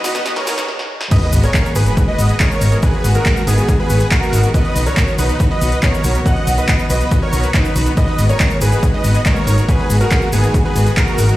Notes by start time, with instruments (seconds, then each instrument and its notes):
Already playing: riser
0.04 string section D#3 F#3 B3 F#4, synth pluck F#4, supersaw synth B4 D#5, snare, open hi-hat, cabasa
0.15 string section D#3 F#3 B3 F#4, synth pluck B3, snare, closed hi-hat, cabasa
0.26 string section D#3 F#3 B3 F#4, synth pluck B3, snare, closed hi-hat, cabasa
0.36 synth pluck C#4, supersaw synth A#4 C#5, snare, closed hi-hat
0.47 string section D#3 F#3 B3 F#4, synth pluck D#4, snare, open hi-hat, cabasa
0.58 synth pluck B4, snare, cabasa
0.68 snare
0.79 snare
1.01 snare
1.11 string section D#3 G#3 B3 F#4, synth pluck G#3, supersaw synth B4 D#5, grand piano D#5, kick, closed hi-hat, crash, sub drop, cabasa
1.22 synth pluck A#3, closed hi-hat
1.32 fm bass G#1, string section D#3 G#3 B3 F#4, synth pluck B3, open hi-hat, cabasa
1.43 synth pluck G#4, supersaw synth A#4 C#5, grand piano C#5, closed hi-hat, cabasa
1.54 string section D#3 G#3 B3 F#4, synth pluck G#3, kick, clap, closed hi-hat, cabasa
1.65 synth pluck A#3, cabasa
1.75 fm bass G#1, string section D#3 G#3 B3 F#4, synth pluck D#4, supersaw synth G#4 B4, grand piano B4, open hi-hat, cabasa
1.86 string section D#3 G#3 B3 F#4, synth pluck G#3, closed hi-hat, cabasa
1.97 string section D#3 G#3 B3 F#4, synth pluck G#3, kick, closed hi-hat, cabasa
2.08 synth pluck A#3, supersaw synth B4 D#5, grand piano D#5
2.18 fm bass G#1, string section D#3 G#3 B3 F#4, synth pluck B3, open hi-hat, cabasa
2.29 synth pluck G#4, closed hi-hat, cabasa
2.40 string section D#3 G#3 B3 F#4, synth pluck G#3, supersaw synth A#4 C#5, grand piano C#5, kick, clap, closed hi-hat, cabasa
2.51 synth pluck A#3, cabasa
2.61 fm bass G#1, string section D#3 G#3 B3 F#4, synth pluck D#4, open hi-hat, cabasa
2.72 string section D#3 G#3 B3 F#4, synth pluck G#3, closed hi-hat, cabasa
2.83 string section D#3 G#3 B3 F#4, synth pluck G#3, supersaw synth G#4 B4, grand piano B4, kick, closed hi-hat, cabasa
2.94 synth pluck A#3, closed hi-hat
3.04 fm bass G#1, string section D#3 G#3 B3 F#4, synth pluck B3, open hi-hat, cabasa
3.15 supersaw synth F#4 A#4, synth pluck G#4, grand piano A#4, closed hi-hat, cabasa
3.26 string section D#3 G#3 B3 F#4, synth pluck G#3, kick, clap, closed hi-hat, cabasa
3.36 synth pluck A#3, cabasa
3.47 fm bass G#1, string section D#3 G#3 B3 F#4, supersaw synth B3 G#4, synth pluck D#4, grand piano G#4, open hi-hat, cabasa
3.58 string section D#3 G#3 B3 F#4, synth pluck G#3, closed hi-hat, cabasa
3.69 string section D#3 G#3 B3 F#4, synth pluck G#3, kick, closed hi-hat, cabasa
3.79 synth pluck A#3, supersaw synth G#4 B4, grand piano B4
3.90 fm bass G#1, string section D#3 G#3 B3 F#4, synth pluck B3, open hi-hat, cabasa
4.00 synth pluck G#4, closed hi-hat, cabasa
4.11 string section D#3 G#3 B3 F#4, synth pluck G#3, supersaw synth F#4 A#4, grand piano A#4, kick, clap, closed hi-hat, cabasa
4.22 synth pluck A#3, cabasa
4.33 fm bass G#1, string section D#3 G#3 B3 F#4, synth pluck D#4, open hi-hat, cabasa
4.43 string section D#3 G#3 B3 F#4, synth pluck G#3, closed hi-hat, cabasa
4.54 string section D#3 F#3 B3 F#4, synth pluck B3, supersaw synth B4 D#5, grand piano D#5, kick, closed hi-hat, cabasa
4.65 synth pluck C#4, closed hi-hat
4.76 fm bass B1, string section D#3 F#3 B3 F#4, synth pluck D#4, open hi-hat, cabasa
4.86 supersaw synth A#4 C#5, synth pluck B4, grand piano C#5, closed hi-hat, cabasa
4.97 string section D#3 F#3 B3 F#4, synth pluck B3, kick, clap, closed hi-hat, cabasa
5.08 synth pluck C#4, cabasa
5.18 fm bass B1, string section D#3 F#3 B3 F#4, supersaw synth D#4 B4, synth pluck F#4, grand piano B4, open hi-hat, cabasa
5.29 string section D#3 F#3 B3 F#4, synth pluck B3, closed hi-hat, cabasa
5.40 string section D#3 F#3 B3 F#4, synth pluck B3, kick, closed hi-hat, cabasa
5.51 synth pluck C#4, supersaw synth B4 D#5, grand piano D#5
5.61 fm bass B1, string section D#3 F#3 B3 F#4, synth pluck D#4, open hi-hat, cabasa
5.72 synth pluck B4, closed hi-hat, cabasa
5.83 string section D#3 F#3 B3 F#4, synth pluck B3, supersaw synth A#4 C#5, grand piano C#5, kick, clap, closed hi-hat, cabasa
5.94 synth pluck C#4, cabasa
6.04 fm bass B1, string section D#3 F#3 B3 F#4, synth pluck F#4, open hi-hat, cabasa
6.15 string section D#3 F#3 B3 F#4, synth pluck B3, closed hi-hat, cabasa
6.26 string section D#3 F#3 B3 F#4, synth pluck B3, supersaw synth D#5 F#5, grand piano F#5, kick, closed hi-hat, cabasa
6.36 synth pluck C#4, closed hi-hat
6.47 fm bass B1, string section D#3 F#3 B3 F#4, synth pluck D#4, open hi-hat, cabasa
6.58 synth pluck B4, supersaw synth B4 D#5, grand piano D#5, closed hi-hat, cabasa
6.68 string section D#3 F#3 B3 F#4, synth pluck B3, kick, clap, closed hi-hat, cabasa
6.79 synth pluck C#4, cabasa
6.90 fm bass B1, string section D#3 F#3 B3 F#4, synth pluck F#4, supersaw synth B4 D#5, grand piano D#5, open hi-hat, cabasa
7.01 string section D#3 F#3 B3 F#4, synth pluck B3, closed hi-hat, cabasa
7.11 string section D#3 F#3 B3 F#4, synth pluck B3, kick, closed hi-hat, cabasa
7.22 synth pluck C#4, supersaw synth A#4 C#5, grand piano C#5
7.33 fm bass B1, string section D#3 F#3 B3 F#4, synth pluck D#4, open hi-hat, cabasa
7.43 synth pluck B4, closed hi-hat, cabasa
7.54 string section D#3 F#3 B3 F#4, synth pluck B3, supersaw synth D#4 B4, grand piano B4, kick, clap, closed hi-hat, cabasa
7.65 synth pluck C#4, closed hi-hat, cabasa
7.76 fm bass B1, string section D#3 F#3 B3 F#4, synth pluck F#4, open hi-hat, cabasa
7.86 string section D#3 F#3 B3 F#4, synth pluck B3, closed hi-hat, cabasa
7.97 string section D#3 G#3 B3 F#4, synth pluck G#3, supersaw synth B4 D#5, grand piano D#5, kick, closed hi-hat, cabasa
8.08 synth pluck D#4, closed hi-hat
8.18 fm bass G#1, string section D#3 G#3 B3 F#4, synth pluck B3, open hi-hat, cabasa
8.29 synth pluck G#4, supersaw synth A#4 C#5, grand piano C#5, closed hi-hat, cabasa
8.40 string section D#3 G#3 B3 F#4, synth pluck G#3, kick, clap, closed hi-hat, cabasa
8.50 synth pluck A#3, cabasa
8.61 fm bass G#1, string section D#3 G#3 B3 F#4, synth pluck D#4, supersaw synth G#4 B4, grand piano B4, open hi-hat, cabasa
8.72 string section D#3 G#3 B3 F#4, synth pluck G#3, closed hi-hat, cabasa
8.83 string section D#3 G#3 B3 F#4, synth pluck G#3, kick, closed hi-hat, cabasa
8.94 synth pluck D#4, supersaw synth B4 D#5, grand piano D#5
9.04 fm bass G#1, string section D#3 G#3 B3 F#4, synth pluck B3, open hi-hat, cabasa
9.14 synth pluck G#4, closed hi-hat, cabasa
9.26 string section D#3 G#3 B3 F#4, synth pluck G#3, supersaw synth A#4 C#5, grand piano C#5, kick, clap, closed hi-hat, cabasa
9.36 synth pluck A#3, cabasa
9.47 fm bass G#1, string section D#3 G#3 B3 F#4, synth pluck D#4, open hi-hat, cabasa
9.58 string section D#3 G#3 B3 F#4, synth pluck G#3, closed hi-hat, cabasa
9.68 string section D#3 G#3 B3 F#4, synth pluck G#3, supersaw synth G#4 B4, grand piano B4, kick, closed hi-hat, cabasa
9.79 synth pluck D#4, closed hi-hat
9.90 fm bass G#1, string section D#3 G#3 B3 F#4, synth pluck B3, open hi-hat, cabasa
10.01 supersaw synth F#4 A#4, synth pluck G#4, grand piano A#4, closed hi-hat, cabasa
10.11 string section D#3 G#3 B3 F#4, synth pluck G#3, kick, clap, closed hi-hat, cabasa
10.22 synth pluck A#3, cabasa
10.32 fm bass G#1, string section D#3 G#3 B3 F#4, supersaw synth B3 G#4, synth pluck D#4, grand piano G#4, open hi-hat, cabasa
10.43 string section D#3 G#3 B3 F#4, synth pluck G#3, closed hi-hat, cabasa
10.54 string section D#3 G#3 B3 F#4, synth pluck G#3, kick, closed hi-hat, cabasa
10.65 synth pluck D#4, supersaw synth G#4 B4, grand piano B4
10.76 fm bass G#1, string section D#3 G#3 B3 F#4, synth pluck B3, open hi-hat, cabasa
10.86 synth pluck G#4, closed hi-hat, cabasa
10.97 string section D#3 G#3 B3 F#4, synth pluck G#3, supersaw synth F#4 A#4, grand piano A#4, kick, clap, closed hi-hat, cabasa
11.07 synth pluck A#3, cabasa
11.18 fm bass G#1, string section D#3 G#3 B3 F#4, synth pluck D#4, open hi-hat, cabasa
11.28 string section D#3 G#3 B3 F#4, synth pluck G#3, closed hi-hat, cabasa